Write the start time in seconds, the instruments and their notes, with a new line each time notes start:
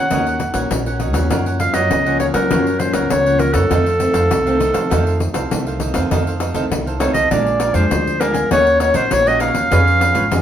Already playing: upright bass D#3, clarinet F#5
0.11 upright bass D#2, nylon-string guitar D#3 A#3 C#4 F#4, cavaquinho D#4 A#4 C#5 F#5, pandeiro
0.26 cavaquinho A#4 C#5 F#5, pandeiro
0.40 muted cavaquinho stroke, pandeiro
0.54 upright bass A#1, nylon-string guitar A#3 C#4 F#4, cavaquinho A#4 C#5 F#5, pandeiro
0.71 upright bass A#1, nylon-string guitar A#2, pandeiro
0.86 nylon-string guitar A#3 C#4 F#4, cavaquinho A#4 C#5 F#5, pandeiro
1.00 cavaquinho D#4 A#4 C#5 F#5, pandeiro
1.13 upright bass D#2, nylon-string guitar F3 A#3 C#4, cavaquinho A#4 C#5 F#5, pandeiro
1.30 upright bass F#2, nylon-string guitar F#2, cavaquinho F4 A#4 C#5 F#5, pandeiro
1.46 cavaquinho A#4 C#5 F#5, pandeiro
1.60 nylon-string guitar F3 A#3 C#4, clarinet F5, muted cavaquinho stroke, pandeiro
1.73 upright bass F#2, cavaquinho A#4 C#5 F#5, clarinet D#5, pandeiro
1.91 upright bass C#2, nylon-string guitar C#3, pandeiro
2.06 nylon-string guitar F3 A#3 C#4, cavaquinho A#4 C#5 F#5, pandeiro
2.19 cavaquinho F4 A#4 C#5 F#5, clarinet C#5, pandeiro
2.34 nylon-string guitar F3 A#3 C#4, upright bass F#3, clarinet A#4, cavaquinho A#4 C#5 F#5, pandeiro
2.51 nylon-string guitar F#2 F3 A#3 C#4, upright bass F#2, cavaquinho F4 A#4 C#5 F#5, pandeiro
2.67 cavaquinho A#4 C#5 F#5, pandeiro
2.80 nylon-string guitar F3 A#3 C#4, clarinet C5, muted cavaquinho stroke, pandeiro
2.93 upright bass C#2, clarinet A#4, cavaquinho A#4 C#5 F#5, pandeiro
3.10 upright bass C#2, nylon-string guitar C#3, clarinet C#5, pandeiro
3.26 nylon-string guitar F3 A#3 C#4, cavaquinho A#4 C#5 F#5, pandeiro
3.39 cavaquinho F4 A#4 C#5 F#5, clarinet A#4, pandeiro
3.54 upright bass F#2, clarinet A4, cavaquinho A#4 C#5 F#5, pandeiro
3.71 nylon-string guitar F2 D#3 A3 C4, upright bass F2, cavaquinho D#4 A4 C5 F5, pandeiro
3.86 cavaquinho A4 C5 F5, pandeiro
4.00 nylon-string guitar D#3 A3 C4, muted cavaquinho stroke, pandeiro
4.13 upright bass F2, cavaquinho A4 C5 F5, pandeiro
4.31 upright bass C2, nylon-string guitar C3, pandeiro
4.46 nylon-string guitar D#3 A3 C4, cavaquinho A4 C5 F5, pandeiro
4.59 cavaquinho D#4 A4 C5 F5, pandeiro
4.74 upright bass F3, cavaquinho A4 C5 F5, pandeiro
4.90 nylon-string guitar F2 D#3 A3 C4, upright bass F2, cavaquinho D#4 A4 C5 F5, pandeiro
5.06 cavaquinho A4 C5 F5, pandeiro
5.20 muted cavaquinho stroke, pandeiro
5.34 upright bass C2, cavaquinho A4 C5 F5, pandeiro
5.51 upright bass C2, nylon-string guitar C3 D#3 A3 C4, pandeiro
5.67 cavaquinho A4 C5 F5, pandeiro
5.80 cavaquinho D#4 A4 C5 F5, pandeiro
5.94 upright bass F2, nylon-string guitar D#3 A3 C4, cavaquinho A4 C5 F5, pandeiro
6.11 upright bass F2, nylon-string guitar F2, cavaquinho D#4 A4 C5 F5, pandeiro
6.27 cavaquinho A4 C5 F5, pandeiro
6.40 cavaquinho D#4 A4 C5 F5, pandeiro
6.54 upright bass C2, nylon-string guitar D#3 A3 C4, cavaquinho D#4 A4 C5 F5, pandeiro
6.71 upright bass C2, nylon-string guitar C3, pandeiro
6.86 cavaquinho A4 C5 F5, pandeiro
7.00 nylon-string guitar D#3 A3 C4, cavaquinho D#4 A4 C5 F5, clarinet C#5, pandeiro
7.14 upright bass C2, cavaquinho A4 C5 F5, clarinet D#5, pandeiro
7.31 upright bass A#1, nylon-string guitar A#2 F3 G#3 D4, cavaquinho D4 A#4 F5 G#5, clarinet D5, pandeiro
7.46 pandeiro
7.60 cavaquinho D4 A#4 F5 G#5, pandeiro
7.74 upright bass F2, nylon-string guitar F3 G#3 D4, cavaquinho D4 A#4 F5 G#5, clarinet C5, pandeiro
7.91 upright bass D2, nylon-string guitar F2, pandeiro
8.07 pandeiro
8.20 nylon-string guitar F3 G#3 D4, cavaquinho D4 A#4 F5 G#5, clarinet A#4, pandeiro
8.33 cavaquinho A#4 F5 G#5, pandeiro
8.51 upright bass D#2, nylon-string guitar D#3 A#3 C#4 F#4, cavaquinho D#4 A#4 C#5 F#5, clarinet C#5, pandeiro
8.66 cavaquinho A#4 F#5, pandeiro
8.79 nylon-string guitar A#3 C#4 F#4, cavaquinho D#4 A#4 C#5 F#5, clarinet C#5, pandeiro
8.94 upright bass A#1, cavaquinho D#4 A#4 C#5 F#5, clarinet C5, pandeiro
9.11 upright bass A#1, nylon-string guitar A#2, clarinet C#5, pandeiro
9.26 nylon-string guitar A#3 C#4 F#4, cavaquinho A#4 C#5 F#5, clarinet D#5, pandeiro
9.40 cavaquinho D#4 A#4 C#5 F#5, clarinet F5, pandeiro
9.53 upright bass D#2, cavaquinho A#4 C#5 F#5, pandeiro
9.71 upright bass F2, nylon-string guitar F3 B3 C#4 G#4, cavaquinho F4 B4 C#5 F5, pandeiro
9.88 pandeiro
10.00 cavaquinho F4 B4 C#5 F5, pandeiro
10.14 upright bass G#1, cavaquinho F4 B4 C#5 F5, pandeiro
10.31 upright bass F2, nylon-string guitar F3 B3 C#4 G#4, pandeiro